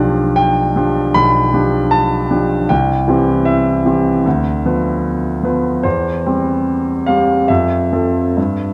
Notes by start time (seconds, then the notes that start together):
Already playing: B1 F3 D4 G4 D5
0.36 G5
0.76 F3 D4 G4
1.14 B1 B5
1.54 F3 D4 G4
1.91 A5
2.31 F3 D4 G4
2.69 C2 G5
3.08 E3 C4 G4
3.45 E5
3.85 E3 C4 G4
4.26 D2
4.65 F3 B3 B4
5.43 F3 B3 B4
5.83 E2 C5
6.26 G3 C4 G4
7.06 G3 C4 G4 F5
7.48 F2 E5
7.92 F3 C4 A4
8.37 G2